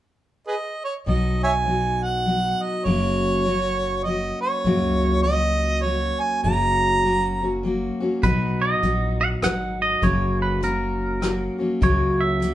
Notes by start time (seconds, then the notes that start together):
0.47 G#4 B4 D#5
0.85 C#5
1.06 B1 B2 F#3 B3 D#4 F#4 D#5
1.44 C#5 E5 G#5
1.66 F#3 B3 D#4 F#4
2.04 F#5
2.25 F#3 B3 D#4 F#4
2.63 D#5
2.85 F#1 F#2 C#3 F#3 A#3 C#4 F#4 C#5
3.45 F#3 A#3 C#4 F#4
4.04 F#3 A#3 C#4 D#5
4.09 F#4
4.41 C#5
4.65 C#2 F#2 C#3 F#3 A#3 C#4 F#4
5.23 F#3 A#3 C#4 D#5
5.27 F#4
5.83 F#3 A#3 C#4 C#5
5.87 F#4
6.21 G#5
6.43 F#1 F#2 C#3 F#3 A#3 C#4 F#4 A#5
7.03 F#3 A#3 C#4 F#4
7.41 F#3 A#3 C#4 F#4
7.63 F#3 A#3 C#4 F#4
8.00 F#3 A#3 C#4 F#4
8.22 B1 B2 F#3 B3 D#4 F#4 B4, kick, closed hi-hat
8.62 D#5
8.82 A#1 F#3 B3 D#4 F#4, closed hi-hat
9.21 F#5
9.42 G#1 F#3 B3 D#4 F#4 F#5, cross-stick, closed hi-hat
9.82 D#5
10.02 F#1 F#2 C#3 F#3 A#3 C#4 F#4 C#5, kick, closed hi-hat
10.42 B4
10.61 F#3 A#3 C#4 F#4 A#4, closed hi-hat
11.21 F#3 A#3 C#4 F#4, cross-stick, closed hi-hat
11.58 F#3 A#3 C#4 F#4
11.81 C#2 F#2 C#3 F#3 A#3 C#4 F#4 C#5, kick, closed hi-hat
12.21 E5
12.40 F#3 A#3 C#4 F#4, closed hi-hat